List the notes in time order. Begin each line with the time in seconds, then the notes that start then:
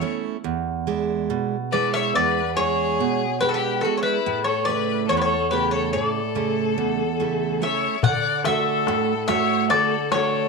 0.01 A3 C#4 E4
0.44 E2
0.87 G#3 D4 E4
1.30 B2
1.72 G#3 D4 E4 B4 D5
1.93 C#5 E5
2.14 E2 B4 D5
2.55 G#3 D4 E4 G#4 C#5
3.00 B2
3.41 G#3 D4 E4 G4 B4
3.49 F#4 A4
3.54 G4 B4
3.81 G#3 D4 F#4 A4
3.85 E4
3.97 A4 C#5
4.02 E4 B4
4.26 A2
4.44 A4 C#5
4.65 A3 B4 D5
4.69 C#3 E4
5.07 E2 A4 C#5
5.17 G4 B4
5.21 A4 C#5
5.51 C#3 A3 E4 G4 B4
5.71 A4 C#5
5.93 A2 A4 D5
6.35 C#3 A3 E4
6.78 E2
7.20 C#3 A3 E4
7.62 A3 C#4 E4 C#5 E5
8.03 D3 D5 F#5, darbuka dum
8.45 A3 D4 F#4 A4 E5, darbuka tek
8.87 A2, darbuka tek
9.28 A3 D4 F#4 C#5 E5, darbuka tek
9.69 D3 A4 D5, darbuka tek
10.12 A3 D4 F#4 A4 C#5, darbuka tek
10.32 darbuka tek